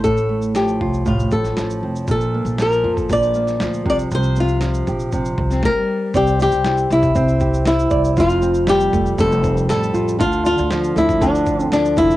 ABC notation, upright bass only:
X:1
M:4/4
L:1/16
Q:1/4=118
K:F
V:1 name="Upright bass" clef=bass
A,,,6 C,,4 A,,,2 A,,,2 F,,,2 | B,,,3 B,,,3 F,,2 B,,,4 D,,2 C,,2 | C,,6 B,,,4 C,,2 z4 | C,,3 C,,3 C,,2 C,,6 C,,2 |
F,,,6 F,,,2 F,,,4 A,,,2 A,,,2 | D,,3 D,,3 D,,2 D,,6 F,,,2 |]